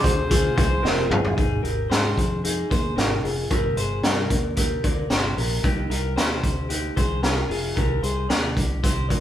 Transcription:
Already playing: F3 C4 F4 G#4 C5
0.03 D2 C5, kick, hi-hat pedal, open hi-hat
0.30 F4 G#4, kick, hi-hat pedal, open hi-hat
0.56 C2 G#4 C5, kick, hi-hat pedal, open hi-hat
0.83 F1 C4 F4 G#4 A#4 D#5, snare
1.10 G1 F4 G#4, mid tom
1.25 floor tom
1.37 G#1 D#4 G#4, kick, closed hi-hat
1.63 G#1 G4 A#4, closed hi-hat
1.90 G#2 G#4 C5, snare, closed hi-hat
2.17 F2, kick, closed hi-hat
2.44 D#4 G#4, closed hi-hat
2.70 D#2 G#4 C5, kick, closed hi-hat
2.96 G#1 D#4 A#4, snare, closed hi-hat
3.23 F1 F4 G#4, open hi-hat
3.50 G1 G4 A#4, kick, closed hi-hat
3.76 G1 G#4 C5, closed hi-hat
4.03 G2 A#4 D5, snare, closed hi-hat
4.30 D#2, kick, closed hi-hat
4.56 G4 A#4, kick, closed hi-hat
4.84 D2 A#4 D5, kick, closed hi-hat
5.10 G1 G4 C5, snare, closed hi-hat
5.36 A#1 G4 A#4, open hi-hat
5.63 C2 D#4 G4, kick, closed hi-hat
5.90 C2 G4 A#4, closed hi-hat
6.16 D#2 G4 C5, snare, closed hi-hat
6.43 D2, kick, closed hi-hat
6.69 D#4 G4, closed hi-hat
6.96 C2 G#4 C5, kick, closed hi-hat
7.23 G4 A#4, snare, closed hi-hat
7.49 F1 F4 G#4, open hi-hat
7.76 C2 G4 A#4, kick, closed hi-hat
8.02 C2 G#4 C5, closed hi-hat
8.29 D#2 G4 D5, snare, closed hi-hat
8.57 C2, kick, closed hi-hat
8.83 G4 C5, kick, closed hi-hat
9.09 A#4 D5, kick, closed hi-hat

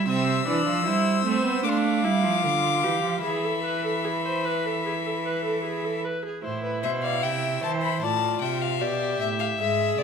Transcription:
0.08 C3 C4 E5 E6
0.47 E3 D4 D5
0.67 F3
0.86 G3 E4 C5
1.25 A3 C4
1.45 B3
1.64 A3 D4 F5 D6
1.71 C6
1.78 D6
2.04 G3 E4
2.23 F3
2.43 D3 F4
2.83 E3 G4
3.03 F3
3.23 E3 G#4 E5 B5
3.44 A4
3.64 B4
3.85 A4
4.04 G#4
4.24 C5
4.45 B4
4.65 A4
4.86 G#4
5.06 A4
5.25 B4
5.45 A4
5.65 G#4
5.85 A4
6.05 B4
6.25 G#4
6.43 A2 E4 C5
6.64 B4
6.83 B2 C5 E5
7.03 D5 F5
7.23 C3 E5 G5
7.63 E3 C5 A5
7.82 B5
8.02 A2 F4 D5 A5
8.41 C3 E5 G5
8.62 F5
8.81 B2 G4 D5
9.20 A2 E5
9.39 F5
9.59 G#2 G#4 E5
9.98 C3 D5

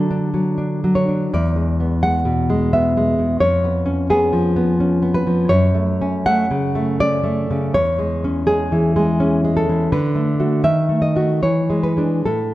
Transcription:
Already playing: D3 F#3 A4
0.11 D4
0.34 F#3
0.58 D4
0.84 F#3
0.95 C#5
1.09 D4
1.34 E2 D5
1.56 G#3
1.80 B3
2.02 G#3 F#5
2.25 B2
2.50 G#3
2.73 B3 E5
2.97 G#3
3.19 B2
3.40 F2 C#5
3.64 B3
3.86 C#4
4.10 B3 G#4
4.33 F3
4.56 B3
4.80 C#4
5.02 B3
5.14 B4
5.27 F3
5.49 F#2 C#5
5.75 A3
6.01 C#4
6.26 A3 F#5
6.51 C#3
6.75 A3
7.00 C#4 D5
7.24 A3
7.51 C#3
7.74 E2 C#5
7.99 G#3
8.24 C#4
8.47 G#3 G#4
8.72 E3
8.96 G#3
9.20 C#4
9.44 G#3
9.57 A4
9.69 E3
9.92 D3 B4
10.15 A3
10.40 A3 F#4
10.64 D#3 E5
10.89 A3
11.02 D#5
11.16 A3 F#4
11.43 E3 C#5
11.70 G#3
11.83 B4
11.97 G#3 D4
12.26 A2 A4

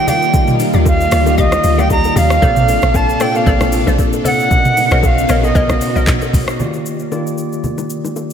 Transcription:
Already playing: D#3 G3 A#3 D#4 F4 G4 C#5 D5 F5
0.07 G4 D5 F5 G5, open hi-hat, low conga, shaker
0.22 shaker
0.33 D#3 A#3 F4 G4 D#5, kick, low conga, shaker
0.47 mid tom, shaker
0.60 open hi-hat, low bongo, shaker
0.73 D#2 G4 D5 F5, shaker
0.86 F5, kick, high bongo, shaker
1.01 shaker
1.11 D2 D#3 A#3 F4 G4 D5 F5, cross-stick, open hi-hat, shaker
1.26 A#3 D#4 F4 G4 D#5, high bongo, shaker
1.38 G4 D#5 F5, kick, low conga, shaker
1.52 cross-stick, low bongo, shaker
1.64 D2, open hi-hat, shaker
1.78 G4 D5 F5 G5, low bongo, shaker
1.90 A#5, kick, high bongo, shaker
2.04 high bongo, shaker
2.16 D#2 G4 D5 F5, open hi-hat, low conga, shaker
2.30 cross-stick, shaker
2.42 A#1 A#2 C3 A#3 C4 D4 A4 C5 D5, kick, low conga, shaker
2.56 mid tom, shaker
2.68 open hi-hat, low bongo, shaker
2.82 A#1, cross-stick, shaker
2.94 A5, kick, high bongo, shaker
3.09 shaker
3.20 A#2 A#3 C4 A4 C5 D5 G5, cross-stick, open hi-hat, shaker
3.34 A#2 A#3 C4 A4 C5 F5, high bongo, shaker
3.42 D5
3.46 A1 A4 C5 D5, kick, low conga, shaker
3.61 A#1, cross-stick, low bongo, shaker
3.72 open hi-hat, shaker
3.87 A#1 A4 C5 D5, low bongo, shaker
3.98 kick, high bongo, shaker
4.13 high bongo, shaker
4.24 A4 C5 D5 F#5, open hi-hat, low conga, shaker
4.40 shaker
4.51 B2 C#3 B3 C#4 D#4 F#4 A#4 D5, kick, low conga, shaker
4.58 D#5
4.65 mid tom, shaker
4.77 open hi-hat, low bongo, shaker
4.91 B1 A#4 C#5 D#5, cross-stick, shaker
5.03 F5, kick, high bongo, shaker
5.18 shaker
5.29 A#1 B2 B3 C#4 A#4 C#5 D#5, cross-stick, open hi-hat, shaker
5.43 B2 B3 C#4 A#4 D#5, high bongo, shaker
5.55 A#1 A#4 C#5 D#5, kick, low conga, shaker
5.69 B1, cross-stick, low bongo, shaker
5.81 open hi-hat, shaker
5.95 B1 A#4 C#5 D#5, low bongo, shaker
6.07 A#1, kick, clap, high bongo, shaker
6.22 high bongo, shaker
6.33 A#1, kick, open hi-hat, low conga, shaker
6.48 cross-stick, shaker
6.59 D#3 A#3 F4 G4 D5, low conga, shaker
6.74 shaker
6.86 shaker
6.99 shaker
7.11 D#3 A#3 F4 G4 D5, high bongo, shaker
7.27 shaker
7.38 shaker
7.53 shaker
7.64 low conga, shaker
7.78 low bongo, shaker
7.90 shaker
8.04 low bongo, shaker
8.16 high bongo, shaker

